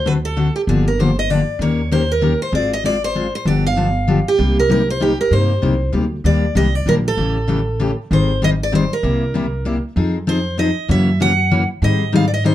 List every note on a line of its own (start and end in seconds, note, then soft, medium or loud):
0.00 0.48 D2 medium
0.06 0.16 D3 medium
0.06 0.16 A3 medium
0.06 0.16 C4 medium
0.06 0.16 F#4 medium
0.06 0.16 A4 medium
0.06 0.12 B4 medium
0.25 0.55 A4 medium
0.37 0.47 D3 medium
0.37 0.47 A3 medium
0.37 0.47 C4 medium
0.37 0.47 F#4 medium
0.37 0.47 A4 medium
0.56 0.61 G4 medium
0.67 1.41 G1 medium
0.67 0.87 D3 medium
0.67 0.87 F3 medium
0.67 0.88 A#3 medium
0.67 0.88 D4 medium
0.67 0.88 G4 medium
0.67 0.87 G#4 medium
0.88 0.99 A#4 medium
0.99 1.09 D3 medium
0.99 1.09 F3 medium
0.99 1.10 A#3 medium
0.99 1.10 D4 medium
0.99 1.10 G4 medium
0.99 1.18 C5 medium
1.19 1.30 D#5 medium
1.30 1.40 D3 medium
1.30 1.40 F3 medium
1.30 1.40 A#3 medium
1.30 1.40 D4 medium
1.30 1.41 G4 medium
1.30 1.60 D5 medium
1.59 2.34 D#2 medium
1.59 1.80 D#3 medium
1.59 1.80 A#3 medium
1.59 1.80 C#4 medium
1.59 1.80 G4 medium
1.59 1.80 A#4 medium
1.59 1.92 C#5 medium
1.91 2.02 D#3 medium
1.91 2.02 A#3 medium
1.91 2.02 C#4 medium
1.91 2.02 G4 medium
1.91 2.02 A#4 medium
1.91 2.11 C5 medium
2.12 2.39 A#4 medium
2.21 2.32 D#3 medium
2.21 2.33 A#3 medium
2.21 2.33 C#4 medium
2.21 2.33 G4 medium
2.21 2.33 A#4 medium
2.42 2.54 C5 medium
2.52 3.27 G#1 medium
2.52 2.72 G#3 medium
2.52 2.72 C4 medium
2.52 2.72 F4 medium
2.52 2.73 G#4 medium
2.52 2.73 D5 medium
2.73 2.85 D#5 medium
2.84 2.95 G#3 medium
2.84 2.95 C4 medium
2.84 2.95 F4 medium
2.84 2.95 G#4 medium
2.84 3.04 D5 medium
3.04 3.32 C5 loud
3.15 3.26 G#3 medium
3.15 3.26 C4 medium
3.15 3.26 F4 medium
3.15 3.26 G#4 medium
3.35 3.47 C5 medium
3.45 4.20 G1 medium
3.45 3.65 D3 medium
3.45 3.65 F3 medium
3.45 3.66 B3 medium
3.45 3.66 D4 medium
3.45 3.66 G4 medium
3.45 3.66 D5 medium
3.67 4.29 F5 medium
3.76 3.87 D3 medium
3.76 3.87 F3 medium
3.76 3.87 B3 medium
3.76 3.88 D4 medium
3.76 3.88 G4 medium
4.08 4.18 D3 medium
4.08 4.18 F3 medium
4.08 4.18 B3 medium
4.08 4.19 D4 medium
4.08 4.19 G4 medium
4.28 4.59 G4 medium
4.38 5.13 C2 medium
4.38 4.58 C3 medium
4.38 4.58 G3 medium
4.38 4.58 A#3 medium
4.38 4.59 D#4 medium
4.38 4.59 G4 medium
4.59 4.70 A#4 medium
4.69 4.80 C3 medium
4.69 4.80 G3 medium
4.69 4.80 A#3 medium
4.69 4.80 D#4 medium
4.69 4.81 G4 medium
4.69 4.88 A#4 medium
4.90 5.02 C5 medium
5.00 5.11 C3 medium
5.00 5.11 G3 medium
5.00 5.11 A#3 medium
5.00 5.11 D#4 medium
5.00 5.12 G4 medium
5.00 5.20 G4 medium
5.21 5.33 A#4 medium
5.31 5.56 G2 medium
5.31 5.51 C3 medium
5.31 5.51 G3 medium
5.31 5.51 A#3 medium
5.31 5.51 D#4 medium
5.31 5.52 G4 medium
5.31 5.90 C5 medium
5.62 5.89 C2 medium
5.62 5.73 C3 medium
5.62 5.73 G3 medium
5.62 5.73 A#3 medium
5.62 5.73 D#4 medium
5.62 5.73 G4 loud
5.92 6.19 D2 medium
5.92 6.04 C3 medium
5.92 6.04 G3 medium
5.92 6.04 A#3 medium
5.92 6.04 D#4 medium
5.92 6.04 G4 medium
6.24 6.49 D#2 medium
6.24 6.44 D#3 medium
6.24 6.44 G3 medium
6.24 6.44 A#3 medium
6.24 6.44 D4 medium
6.24 6.45 G4 medium
6.24 6.54 D5 medium
6.55 6.82 C2 medium
6.55 6.66 D#3 medium
6.55 6.66 G3 medium
6.55 6.66 A#3 medium
6.55 6.66 D4 medium
6.55 6.66 G4 medium
6.55 6.75 D#5 loud
6.75 6.87 D5 loud
6.86 7.12 A#1 medium
6.86 6.97 D#3 medium
6.86 6.97 G3 medium
6.86 6.98 A#3 medium
6.86 6.98 D4 medium
6.86 6.98 G4 medium
6.86 6.94 A#4 medium
7.08 7.95 A4 medium
7.17 7.92 A1 medium
7.17 7.37 C#3 medium
7.17 7.37 E3 medium
7.17 7.37 A3 medium
7.17 7.37 C#4 medium
7.17 7.37 G4 medium
7.48 7.59 C#3 medium
7.48 7.59 E3 medium
7.48 7.59 A3 medium
7.48 7.59 C#4 medium
7.48 7.59 G4 loud
7.80 7.90 C#3 medium
7.80 7.90 E3 medium
7.80 7.90 A3 medium
7.80 7.90 C#4 medium
7.80 7.91 G4 medium
8.11 8.85 G#1 medium
8.11 8.30 D#3 medium
8.11 8.31 G3 medium
8.11 8.31 C4 medium
8.11 8.31 D#4 medium
8.11 8.31 G#4 medium
8.11 8.41 C5 medium
8.42 8.52 D#3 medium
8.42 8.52 G3 medium
8.42 8.53 C4 medium
8.42 8.53 D#4 medium
8.42 8.53 G#4 medium
8.42 8.49 D#5 loud
8.63 8.74 D5 medium
8.72 8.83 D#3 medium
8.72 8.83 G3 medium
8.72 8.83 C4 loud
8.72 8.83 D#4 medium
8.72 8.83 G#4 medium
8.72 8.93 C5 medium
8.93 9.81 A#4 medium
9.03 9.78 C2 medium
9.03 9.23 C3 medium
9.03 9.23 G3 medium
9.03 9.24 A#3 medium
9.03 9.23 E4 medium
9.03 9.24 G4 medium
9.34 9.45 C3 medium
9.34 9.45 G3 medium
9.34 9.45 A#3 medium
9.34 9.46 E4 medium
9.34 9.46 G4 loud
9.65 9.76 C3 medium
9.65 9.76 G3 medium
9.65 9.76 A#3 medium
9.65 9.76 E4 medium
9.65 9.76 G4 medium
9.96 10.71 F2 medium
9.96 10.16 F3 medium
9.96 10.16 C4 medium
9.96 10.16 D#4 medium
9.96 10.17 G#4 medium
10.27 10.38 F3 medium
10.27 10.38 C4 loud
10.27 10.38 D#4 medium
10.27 10.38 G#4 medium
10.27 10.59 C5 medium
10.58 10.69 F3 medium
10.58 10.69 C4 medium
10.58 10.69 D#4 medium
10.58 10.69 G#4 medium
10.58 10.91 D#5 medium
10.88 11.64 F#2 medium
10.88 11.09 C#3 medium
10.88 11.09 E3 medium
10.88 11.09 A#3 medium
10.88 11.09 C#4 medium
10.88 11.09 F#4 medium
10.88 11.19 E5 medium
11.20 11.31 C#3 medium
11.20 11.31 E3 medium
11.20 11.31 A#3 medium
11.20 11.31 C#4 medium
11.20 11.32 F#4 loud
11.20 11.67 F#5 loud
11.51 11.62 C#3 medium
11.51 11.62 E3 medium
11.51 11.62 A#3 medium
11.51 11.62 C#4 medium
11.51 11.63 F#4 medium
11.82 12.55 G#2 medium
11.82 12.02 D#3 medium
11.82 12.02 G3 medium
11.82 12.02 C4 medium
11.82 12.02 D#4 medium
11.82 12.03 G#4 medium
11.82 12.15 D#5 medium
12.12 12.24 D#3 medium
12.12 12.24 G3 medium
12.12 12.24 C4 medium
12.12 12.24 D#4 medium
12.12 12.24 G#4 medium
12.12 12.27 F5 medium
12.28 12.32 D5 medium
12.34 12.45 D#5 medium
12.44 12.55 D#3 medium
12.44 12.55 G3 medium
12.44 12.55 C4 medium
12.44 12.55 D#4 medium
12.44 12.55 G#4 medium
12.44 12.55 C5 medium